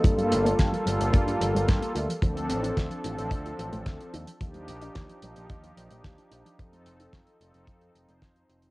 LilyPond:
<<
  \new Staff \with { instrumentName = "Analog synth pad" } { \time 4/4 \key g \minor \tempo 4 = 110 <g bes f' a'>4. <g bes f' a'>2 r8 | <f c' d' a'>4. <f c' d' a'>2 r8 | <f d' ees' g'>4. <f d' ees' g'>2~ <f d' ees' g'>8 | <f c' ees' a'>4. <f c' ees' a'>4 <f c' ees' c''>4. | }
  \new Staff \with { instrumentName = "Synth arpeggio sound" } { \time 4/4 \key g \minor f16 g16 a16 bes16 d'16 f16 g16 a16 bes16 d'16 f16 g16 a16 bes16 f'16 f16 | f16 a16 c'16 d'16 f'16 f16 a16 c'16 d'16 f'16 f16 a16 c'16 d'16 ees'16 f16 | f16 g16 bes16 d'16 ees'16 f16 g16 bes16 d'16 ees'16 f16 g16 bes16 d'16 ees'16 f16 | f16 a16 r16 ees'16 f'16 f16 a16 c'16 ees'16 f'16 f16 a16 c'16 ees'16 f'16 f16 | }
  \new Staff \with { instrumentName = "Picked electric bass" } { \clef bass \time 4/4 \key g \minor g,8 g,,16 r16 g,16 r16 g,,16 g,,16 g,16 r16 g,,16 g,,16 g,16 r16 d,16 r16 | d,8 a,,16 r16 d,16 r16 a,,16 a,,16 r8 a,,16 a,,16 d,16 r16 ees,16 r16 | ees,8 bes,,16 r16 ees,16 r16 bes,,16 bes,,16 ees,16 r16 bes,,16 bes,,16 ees,16 r16 bes,,16 r16 | f,8 f,,16 r16 f,16 r16 f,,16 f,,16 f,16 r16 f,,16 f,,16 f,16 r16 f,,16 r16 | }
  \new DrumStaff \with { instrumentName = "Drums" } \drummode { \time 4/4 <hh bd>16 hh16 hh16 hh16 <hh bd sn>16 hh16 hh16 hh16 <hh bd>16 hh16 hh16 hh16 <hh bd sn>16 hh16 hh16 hh16 | <hh bd>16 hh16 hh16 hh16 <hh bd sn>16 hh16 hh16 hh16 <hh bd>16 hh16 hh16 hh16 <hh bd sn>16 hh16 hh16 hh16 | <hh bd>16 hh16 hh16 hh16 <hh bd sn>16 hh16 hh16 hh16 <hh bd>16 hh16 hh16 hh16 <hh bd sn>16 hh16 hh16 hh16 | <hh bd>16 hh16 hh16 hh16 <hh bd sn>16 hh16 hh16 hh16 <hh bd>16 hh16 hh16 hh16 <hh bd sn>16 hh16 hh16 hh16 | }
>>